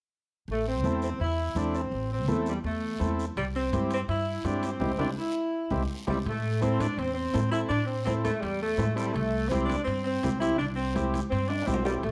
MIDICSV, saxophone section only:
0, 0, Header, 1, 2, 480
1, 0, Start_track
1, 0, Key_signature, 0, "minor"
1, 0, Tempo, 361228
1, 636, Time_signature, 4, 2, 24, 8
1, 16097, End_track
2, 0, Start_track
2, 0, Title_t, "Saxophone section"
2, 0, Program_c, 0, 65
2, 675, Note_on_c, 0, 57, 83
2, 880, Note_off_c, 0, 57, 0
2, 903, Note_on_c, 0, 60, 81
2, 1337, Note_off_c, 0, 60, 0
2, 1372, Note_on_c, 0, 60, 82
2, 1588, Note_off_c, 0, 60, 0
2, 1601, Note_on_c, 0, 64, 86
2, 2045, Note_off_c, 0, 64, 0
2, 2088, Note_on_c, 0, 62, 79
2, 2322, Note_off_c, 0, 62, 0
2, 2337, Note_on_c, 0, 60, 92
2, 2806, Note_off_c, 0, 60, 0
2, 2823, Note_on_c, 0, 60, 82
2, 3034, Note_off_c, 0, 60, 0
2, 3073, Note_on_c, 0, 57, 74
2, 3279, Note_off_c, 0, 57, 0
2, 3313, Note_on_c, 0, 55, 74
2, 3412, Note_off_c, 0, 55, 0
2, 3534, Note_on_c, 0, 57, 84
2, 4195, Note_off_c, 0, 57, 0
2, 4471, Note_on_c, 0, 55, 87
2, 4580, Note_off_c, 0, 55, 0
2, 4727, Note_on_c, 0, 60, 87
2, 5169, Note_off_c, 0, 60, 0
2, 5223, Note_on_c, 0, 60, 85
2, 5325, Note_off_c, 0, 60, 0
2, 5438, Note_on_c, 0, 64, 90
2, 5884, Note_off_c, 0, 64, 0
2, 5914, Note_on_c, 0, 62, 79
2, 6156, Note_off_c, 0, 62, 0
2, 6177, Note_on_c, 0, 60, 89
2, 6645, Note_on_c, 0, 62, 73
2, 6647, Note_off_c, 0, 60, 0
2, 6751, Note_off_c, 0, 62, 0
2, 6880, Note_on_c, 0, 64, 77
2, 7787, Note_off_c, 0, 64, 0
2, 8091, Note_on_c, 0, 55, 73
2, 8197, Note_off_c, 0, 55, 0
2, 8352, Note_on_c, 0, 57, 88
2, 8783, Note_off_c, 0, 57, 0
2, 8811, Note_on_c, 0, 60, 94
2, 9041, Note_on_c, 0, 62, 91
2, 9045, Note_off_c, 0, 60, 0
2, 9278, Note_on_c, 0, 60, 93
2, 9280, Note_off_c, 0, 62, 0
2, 9478, Note_off_c, 0, 60, 0
2, 9494, Note_on_c, 0, 60, 91
2, 9952, Note_off_c, 0, 60, 0
2, 9990, Note_on_c, 0, 64, 94
2, 10100, Note_off_c, 0, 64, 0
2, 10216, Note_on_c, 0, 62, 106
2, 10439, Note_on_c, 0, 60, 89
2, 10450, Note_off_c, 0, 62, 0
2, 10673, Note_off_c, 0, 60, 0
2, 10689, Note_on_c, 0, 60, 87
2, 10804, Note_off_c, 0, 60, 0
2, 10954, Note_on_c, 0, 57, 97
2, 11171, Note_on_c, 0, 55, 90
2, 11180, Note_off_c, 0, 57, 0
2, 11425, Note_off_c, 0, 55, 0
2, 11449, Note_on_c, 0, 57, 90
2, 11891, Note_off_c, 0, 57, 0
2, 11903, Note_on_c, 0, 55, 84
2, 12127, Note_on_c, 0, 57, 96
2, 12151, Note_off_c, 0, 55, 0
2, 12606, Note_on_c, 0, 60, 91
2, 12623, Note_off_c, 0, 57, 0
2, 12826, Note_on_c, 0, 62, 96
2, 12863, Note_off_c, 0, 60, 0
2, 13074, Note_off_c, 0, 62, 0
2, 13082, Note_on_c, 0, 60, 94
2, 13323, Note_off_c, 0, 60, 0
2, 13349, Note_on_c, 0, 60, 93
2, 13800, Note_off_c, 0, 60, 0
2, 13823, Note_on_c, 0, 64, 86
2, 14054, Note_off_c, 0, 64, 0
2, 14059, Note_on_c, 0, 62, 97
2, 14172, Note_off_c, 0, 62, 0
2, 14288, Note_on_c, 0, 60, 85
2, 14749, Note_off_c, 0, 60, 0
2, 15018, Note_on_c, 0, 60, 84
2, 15252, Note_off_c, 0, 60, 0
2, 15256, Note_on_c, 0, 62, 83
2, 15495, Note_on_c, 0, 60, 81
2, 15508, Note_off_c, 0, 62, 0
2, 15748, Note_off_c, 0, 60, 0
2, 15755, Note_on_c, 0, 55, 81
2, 15864, Note_off_c, 0, 55, 0
2, 15984, Note_on_c, 0, 57, 81
2, 16097, Note_off_c, 0, 57, 0
2, 16097, End_track
0, 0, End_of_file